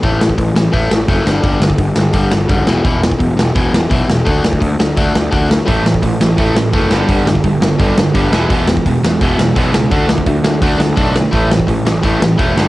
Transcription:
<<
  \new Staff \with { instrumentName = "Distorted electric guitar" } { \clef bass \time 4/4 \key e \mixolydian \tempo 4 = 170 r1 | r1 | r1 | r1 |
<a, e a>8 <a, e>8 <a, e>8 <a, e>8 <a, e a>8 <a, e>8 <a, e a>8 <g, d g>8 | <g, d g>8 <g, d>8 <g, d>8 <g, d>8 <g, d g>8 <g, d>8 <g, d g>8 <e gis b>8 | <e gis b>8 <e gis>8 <e gis>8 <e gis>8 <e gis b>8 <e gis>8 <e gis b>8 <e gis>8 | <d a d'>8 <d a>8 <d a>8 <d a>8 <d a d'>8 <d a>8 <d a d'>8 <d a>8 |
<a, e a>8 <a, e>8 <a, e>8 <a, e>8 <a, e a>8 <a, e>8 <a, e a>8 <g, d g>8 | }
  \new Staff \with { instrumentName = "Overdriven electric guitar" } { \clef bass \time 4/4 \key e \mixolydian <a, e a>8 <a, e>8 <a, e>8 <a, e>8 <a, e a>8 <a, e>8 <a, e a>8 <g, d g>8 | <g, d g>8 <g, d>8 <g, d>8 <g, d>8 <g, d g>8 <g, d>8 <g, d g>8 <e, b, e>8 | <e, b, e>8 <e, b,>8 <e, b,>8 <e, b,>8 <e, b, e>8 <e, b,>8 <e, b, e>8 <e, b,>8 | <d a d'>8 <d a>8 <d a>8 <d a>8 <d a d'>8 <d a>8 <d a d'>8 <d a>8 |
<a, e a>8 <a, e>8 <a, e>8 <a, e>8 <a, e a>8 <a, e>8 <a, e a>8 <g, d g>8 | <g, d g>8 <g, d>8 <g, d>8 <g, d>8 <g, d g>8 <g, d>8 <g, d g>8 <e, b, e>8 | <e, b, e>8 <e, b,>8 <e, b,>8 <e, b,>8 <e, b, e>8 <e, b,>8 <e, b, e>8 <e, b,>8 | <d a d'>8 <d a>8 <d a>8 <d a>8 <d a d'>8 <d a>8 <d a d'>8 <d a>8 |
<a, e a>8 <a, e>8 <a, e>8 <a, e>8 <a, e a>8 <a, e>8 <a, e a>8 <g, d g>8 | }
  \new Staff \with { instrumentName = "Picked electric bass" } { \clef bass \time 4/4 \key e \mixolydian a,,4 a,,8 a,,8 a,,8 a,,8 fis,,8 g,,8 | g,,8 g,,8 g,,8 g,,8 g,,8 g,,8 fis,,8 e,,8 | e,,4 e,,8 e,,8 e,,8 e,,8 b,,8 e,,8 | d,8 d,8 d,8 d,8 d,8 d,8 d,4 |
a,,4 a,,8 a,,8 a,,8 a,,8 fis,,8 g,,8 | g,,8 g,,8 g,,8 g,,8 g,,8 g,,8 g,,8 e,,8 | e,,4 e,,8 e,,8 e,,8 e,,8 b,,8 cis,8 | d,8 d,8 d,8 d,8 d,8 d,8 b,,4 |
a,,4 a,,8 a,,8 a,,8 a,,8 e,,8 g,,8 | }
  \new DrumStaff \with { instrumentName = "Drums" } \drummode { \time 4/4 <hho bd>8 sn16 bd16 <hho bd>8 sn8 <hho bd>8 sn8 <hho bd>8 sn8 | <hho bd>8 sn16 bd16 <hho bd>8 sn8 <hho bd>8 sn8 <hho bd>8 sn8 | <hho bd>8 sn16 bd16 <hho bd>8 sn8 <hho bd>8 sn8 <hho bd>8 sn8 | <hho bd>8 sn16 bd16 <hho bd>8 sn8 <hho bd>8 sn8 <hho bd>8 sn8 |
<hho bd>8 sn16 bd16 <hho bd>8 sn8 <hho bd>8 sn8 <hho bd>8 sn8 | <hho bd>8 sn16 bd16 <hho bd>8 sn8 <hho bd>8 sn8 <hho bd>8 sn8 | <hho bd>8 sn16 bd16 <hho bd>8 sn8 <hho bd>8 sn8 <hho bd>8 sn8 | <hho bd>8 sn16 bd16 <hho bd>8 sn8 <hho bd>8 sn8 <hho bd>8 sn8 |
<hho bd>8 sn16 bd16 <hho bd>8 sn8 <hho bd>8 sn8 <hho bd>8 sn8 | }
>>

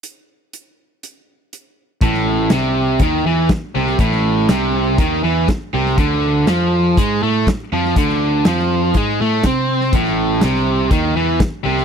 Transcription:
<<
  \new Staff \with { instrumentName = "Overdriven electric guitar" } { \clef bass \time 4/4 \key d \lydian \tempo 4 = 121 r1 | a,4 c4 dis8 e8 r8 c8 | a,4 c4 dis8 e8 r8 c8 | d4 f4 gis8 a8 r8 f8 |
d4 f4 gis8 a8 c'4 | a,4 c4 dis8 e8 r8 c8 | }
  \new Staff \with { instrumentName = "Overdriven electric guitar" } { \clef bass \time 4/4 \key d \lydian r1 | a,4 c4 dis8 e8 r8 c8 | a,4 c4 dis8 e8 r8 c8 | d4 f4 gis8 a8 r8 f8 |
d4 f4 gis8 a8 c'4 | a,4 c4 dis8 e8 r8 c8 | }
  \new Staff \with { instrumentName = "Picked electric bass" } { \clef bass \time 4/4 \key d \lydian r1 | a,,4 c,4 dis,8 e,8 r8 c,8 | a,,4 c,4 dis,8 e,8 r8 c,8 | d,4 f,4 gis,8 a,8 r8 f,8 |
d,4 f,4 gis,8 a,8 c4 | a,,4 c,4 dis,8 e,8 r8 c,8 | }
  \new DrumStaff \with { instrumentName = "Drums" } \drummode { \time 4/4 hh4 hh4 hh4 hh4 | <hh bd>16 sn8. <hh sn>4 <hh bd>4 <hh bd sn>8. sn16 | <hh bd>16 sn8. <hh sn>4 <hh bd>4 <hh bd sn>8. sn16 | <hh bd>4 <hh sn>4 <hh bd>4 <hh bd sn>8. sn16 |
<hh bd>16 sn8. <hh sn>16 sn8. <hh bd>4 <hh bd sn>8. sn16 | <hh bd>16 sn8. <hh sn>16 sn8. <hh bd>4 <hh bd sn>8. sn16 | }
>>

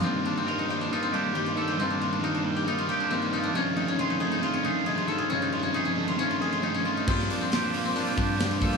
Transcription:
<<
  \new Staff \with { instrumentName = "Clean electric guitar" } { \time 4/4 \key ees \lydian \tempo 4 = 136 << { <f' g'>4 bes'4 f'8 g'4 d'16 f'16 | f'4 bes'4 f'8 g'4 f'8 | f'4 gis'4 f'8 gis'4 f'8 | f'4 gis'4 f'8 gis'4 f'8 |
f'4 g'4 f'8 g'4 f'8 | } \\ { g,4. g4. g,4 | g,4. g4. g,4 | g,4. a4. g,4 | g,4. a4. g,4 |
g,4. bes4. g,4 | } >> }
  \new Staff \with { instrumentName = "Koto" } { \time 4/4 \key ees \lydian c'8 d'16 c'16 f'16 ees'16 g'16 d'16 ees'16 c'16 d'8 g'16 f'16 a'16 g'16 | c'16 d'16 f'16 d'16 ees'16 d'8 g'16 ees'16 f'16 g'16 d'16 c'16 bes16 ees'16 d'16 | cis'8 ees'16 cis'16 f'16 ees'16 gis'16 ees'16 f'16 cis'16 ees'8 gis'16 f'16 a'16 gis'16 | cis'16 ees'16 f'16 cis'16 ees'16 cis'8 f'16 cis'16 f'16 gis'16 f'16 ees'16 cis'16 f'16 ees'16 |
c'8 d'16 c'16 f'16 d'16 f'16 c'16 d'16 c'16 d'8 g'16 f'16 a'16 g'16 | }
  \new Staff \with { instrumentName = "Overdriven electric guitar" } { \time 4/4 \key ees \lydian <g, ees g bes ees'>8 <g bes ees'>8 <g, ees g bes ees'>8 <g bes ees'>8 <ees g bes ees'>8 <g, ees g bes ees'>8 <ees g bes ees'>8 <g bes ees'>8 | <g, ees g bes ees'>8 <g bes ees'>8 <g, ees g bes ees'>8 <g bes ees'>8 <ees g bes ees'>8 <g, ees g bes ees'>8 <ees g bes ees'>8 <g bes ees'>8 | <f, c ees a ees'>8 <ees a ees'>8 <f, c ees a ees'>8 <ees a ees'>8 <c ees a ees'>8 <f, c ees a ees'>8 <c ees a ees'>8 <ees a ees'>8 | <f, c ees a ees'>8 <ees a ees'>8 <f, c ees a ees'>8 <ees a ees'>8 <c ees a ees'>8 <f, c ees a ees'>8 <c ees a ees'>8 <ees a ees'>8 |
<bes, f bes d'>8 <f bes d'>8 <bes, f bes d'>8 <f bes d'>8 <bes, f bes d'>8 <bes, f bes d'>8 <bes, f bes d'>8 <f bes d'>8 | }
  \new Staff \with { instrumentName = "Picked electric bass" } { \clef bass \time 4/4 \key ees \lydian r1 | r1 | r1 | r1 |
g,8 r2 g,8. g,8. | }
  \new DrumStaff \with { instrumentName = "Drums" } \drummode { \time 4/4 r4 r4 r4 r4 | r4 r4 r4 r4 | r4 r4 r4 r4 | r4 r4 r4 r4 |
<cymc bd>16 sn16 hho8 <hho sn>8 hho8 hho8 bd8 <hho sn>8 <hho bd>8 | }
>>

